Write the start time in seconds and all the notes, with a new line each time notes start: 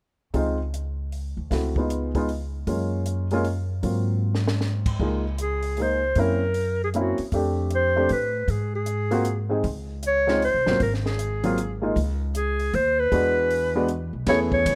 0.34 C#2 G#3 C4 D#4 F4, kick, open hi-hat
0.74 closed hi-hat
1.12 open hi-hat
1.37 D2
1.50 C#2 A3 C4 E4 F#4, kick, snare, open hi-hat
1.76 G#3 B3 D#4 F4, kick
1.90 closed hi-hat
2.15 G#3 B3 D#4 F4, kick, open hi-hat
2.29 open hi-hat
2.67 F#2 G#3 A#3 C#4 F4, kick, open hi-hat
3.06 closed hi-hat
3.31 G#3 A#3 C#4 F4, open hi-hat
3.45 open hi-hat
3.83 G#2 F#3 A#3 C4 F4, kick, open hi-hat
4.35 snare
4.48 snare
4.61 snare
4.86 kick, crash
5.00 C#2 G#3 A#3 D#4 F4, kick
5.38 G#4, closed hi-hat
5.63 open hi-hat
5.77 G#3 A#3 D#4 G#4, open hi-hat
5.81 C5
6.15 F#2 A#3 C4 C#4 E4 A#4, kick, open hi-hat
6.54 open hi-hat
6.84 G#4
6.94 A#3 C4 C#4 E4, closed hi-hat
6.98 F#4
7.18 muted upright bass stroke, open hi-hat
7.32 F2 A3 C4 D4 G4, kick, open hi-hat
7.71 closed hi-hat
7.75 C5
7.96 A3 C4 D4 G4
8.09 A2 B4, open hi-hat
8.48 G#2 G#4, kick, open hi-hat
8.75 G#4
8.86 closed hi-hat
9.11 A#3 C4 F4 F#4, open hi-hat
9.25 closed hi-hat
9.49 G#3 C4 D#4 G#4
9.64 C#2, kick, open hi-hat
10.03 closed hi-hat
10.07 C#5
10.27 G#3 C4 D#4 F4, snare
10.42 C5, open hi-hat
10.54 C2
10.66 G1 F#3 A#3 C4 F4, snare
10.80 G#1 A#4, kick, open hi-hat
10.94 snare
11.06 G#4, snare
11.19 closed hi-hat
11.44 F#3 A#3 C4 F4, open hi-hat
11.58 closed hi-hat
11.82 G#3 A#3 D#4 F4
11.96 C#2, kick, open hi-hat
12.35 G#4, closed hi-hat
12.60 open hi-hat
12.74 D#2 C5, open hi-hat
12.99 B4
13.12 E2 G#3 B3 D4 F#4, kick, open hi-hat
13.51 open hi-hat
13.75 G#3 B3 D4 F#4
13.89 closed hi-hat
14.13 B1
14.27 E2 A3 B3 C#4 E4 G#4 C#5, kick, snare, ride
14.52 C#5, kick
14.66 C#2, kick, hi-hat pedal, ride